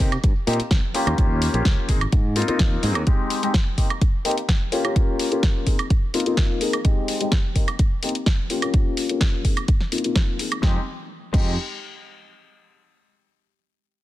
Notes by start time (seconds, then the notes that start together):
0.00 C3 G4, kick
0.12 closed hi-hat, tambourine, high woodblock
0.24 G2, kick, closed hi-hat
0.36 tambourine
0.47 A#2 A#3 C4 D#4 G4, open hi-hat
0.53 closed hi-hat
0.60 muted fingered electric bass stroke, closed hi-hat, tambourine
0.71 C2, kick, snare, closed hi-hat
0.84 tambourine
0.94 A#3 C#4 F4 G4, open hi-hat
1.07 D#2 A#3 C#4 F4 G4, closed hi-hat, tambourine, high woodblock
1.18 D#2 A#3 C#4 F4 G4, kick, closed hi-hat
1.30 tambourine
1.42 open hi-hat
1.54 A#1 A#3 C#4 F4 G4, closed hi-hat, tambourine
1.65 C#2, kick, snare, closed hi-hat
1.89 G#1 A#3 C4 D#4 G#4, kick, open hi-hat
2.01 closed hi-hat, high woodblock
2.12 G#2, kick, closed hi-hat
2.25 tambourine
2.36 A#3 C4 D#4 F4, open hi-hat
2.42 closed hi-hat
2.48 A#3 C4 D#4 F4, muted fingered electric bass stroke, closed hi-hat
2.59 D#2, kick, snare, closed hi-hat
2.71 tambourine
2.83 G#2 A#3 C4 D#4 G#4, open hi-hat
2.95 D#2, closed hi-hat, high woodblock
3.07 G#3 C4 D#4 G4, kick, closed hi-hat
3.19 tambourine
3.30 open hi-hat
3.43 G#3 C4 D#4 G4, closed hi-hat
3.54 kick, snare, closed hi-hat
3.78 A#3 C4 D#4 G4, kick, open hi-hat
3.90 closed hi-hat, high woodblock
4.01 kick, closed hi-hat
4.14 tambourine
4.25 A#3 C4 D#4 G4, open hi-hat
4.31 closed hi-hat
4.38 closed hi-hat
4.49 kick, snare, closed hi-hat
4.72 A#3 C#4 F4 G4, open hi-hat
4.84 A#3 C#4 F4 G4, closed hi-hat, high woodblock
4.96 A#3 C#4 F4 G4, kick, closed hi-hat
5.19 open hi-hat
5.32 A#3 C#4 F4 G4, closed hi-hat
5.43 kick, snare, closed hi-hat
5.66 A#3 C4 D#4 G#4, kick, open hi-hat
5.79 closed hi-hat, high woodblock
5.90 kick, closed hi-hat
6.14 A#3 C4 D#4 F4, open hi-hat
6.20 closed hi-hat
6.26 A#3 C4 D#4 F4, closed hi-hat
6.37 kick, snare, closed hi-hat
6.61 A#3 C4 D#4 G#4, open hi-hat
6.73 closed hi-hat, high woodblock
6.84 G#3 C4 D#4 G4, kick, closed hi-hat
7.08 open hi-hat
7.20 G#3 C4 D#4 G4, closed hi-hat
7.32 kick, snare, closed hi-hat
7.55 A#3 C4 D#4 G4, kick, open hi-hat
7.68 closed hi-hat, high woodblock
7.79 kick, closed hi-hat
8.03 A#3 C4 D#4 G4, open hi-hat
8.09 closed hi-hat
8.15 closed hi-hat
8.26 kick, snare, closed hi-hat
8.50 A#3 C#4 F4 G4, open hi-hat
8.62 A#3 C#4 F4, closed hi-hat, high woodblock
8.74 kick, closed hi-hat
8.97 open hi-hat
9.09 A#3 C#4 F4 G4, closed hi-hat
9.21 kick, snare, closed hi-hat
9.44 A#3 C4 D#4 G#4, kick, open hi-hat
9.57 closed hi-hat, high woodblock
9.68 kick, closed hi-hat
9.80 snare
9.92 A#3 C4 D#4 F4, open hi-hat
9.98 closed hi-hat
10.04 A#3 C4 D#4 F4, closed hi-hat
10.16 kick, snare, closed hi-hat
10.39 A#3 C4 D#4 G#4, open hi-hat
10.52 closed hi-hat, high woodblock
10.62 F2 G#3 C4 D#4 G4, kick, snare
11.33 F2 G#3 C4 D#4 G4, kick, crash